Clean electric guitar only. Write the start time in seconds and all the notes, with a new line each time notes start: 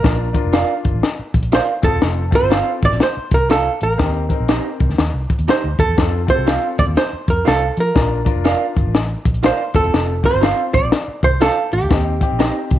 0.53 F4 A#4 D5 F5
1.52 F4 A#4 D5 F5
2.50 F4 A4 C5 F5
3.49 F4 A4 C5 F5
4.49 D#4 G4 C5 D#5
5.48 D#4 G4 C5 D#5
6.46 F4 A4 C5 F5
7.45 F4 A4 C5 F5
8.44 F4 A#4 D5 F5
9.43 F4 A#4 D5 F5
10.41 F4 A4 C5 F5
11.40 F4 A4 C5 F5
12.39 D#4 G4 C5 D#5